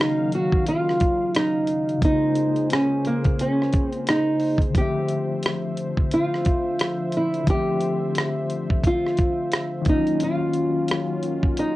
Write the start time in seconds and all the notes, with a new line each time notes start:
Already playing: C#3 D#3 F#3 A#3 D#4 F5
0.01 cross-stick
0.32 F#4, closed hi-hat
0.52 kick
0.67 F4, closed hi-hat
0.89 cross-stick
1.00 kick, closed hi-hat
1.35 D#4, cross-stick, closed hi-hat
1.67 closed hi-hat
1.89 closed hi-hat
1.98 C#3 G#3
2.02 C#3 A#3 D#4 G#4 C5, kick, closed hi-hat
2.09 F4
2.35 closed hi-hat
2.56 closed hi-hat
2.70 C#4, cross-stick, closed hi-hat
3.05 A#3, closed hi-hat
3.24 kick, closed hi-hat
3.39 C#4, closed hi-hat
3.62 cross-stick
3.73 kick, closed hi-hat
3.89 C4, closed hi-hat
4.07 D#4, cross-stick, closed hi-hat
4.40 open hi-hat
4.58 kick, closed hi-hat
4.70 D3 F3
4.75 D3 F3 A3 G4 E5, kick, closed hi-hat
4.79 C4 E5
5.08 closed hi-hat
5.43 cross-stick, closed hi-hat
5.77 closed hi-hat
5.97 kick
6.12 F4, closed hi-hat
6.34 cross-stick
6.45 kick, closed hi-hat
6.79 cross-stick, closed hi-hat
7.12 closed hi-hat
7.17 E4
7.34 closed hi-hat
7.43 D3 F3, kick, closed hi-hat
7.48 A3 C4 G4
7.54 E5
7.81 closed hi-hat
8.15 cross-stick, closed hi-hat
8.50 closed hi-hat
8.70 kick
8.84 F4, kick, closed hi-hat
9.07 cross-stick
9.17 kick, closed hi-hat
9.52 cross-stick, closed hi-hat
9.82 D#3 F#3, closed hi-hat
9.86 D#3 F#3 A#3 C#4 D#4 F4, kick
9.90 C#4 F4
10.07 closed hi-hat
10.20 F4, closed hi-hat
10.53 closed hi-hat
10.88 cross-stick, closed hi-hat
11.23 closed hi-hat
11.43 kick
11.57 D#4, closed hi-hat